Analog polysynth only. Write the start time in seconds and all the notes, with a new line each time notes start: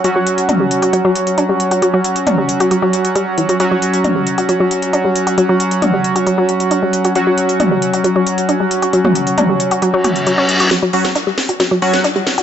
0.04 F#3 C#4 F#4
3.60 F#3 C#4 F#4
7.16 F#3 C#4 F#4
10.93 F#3 C#4 F#4
11.82 F#3 C#4 F#4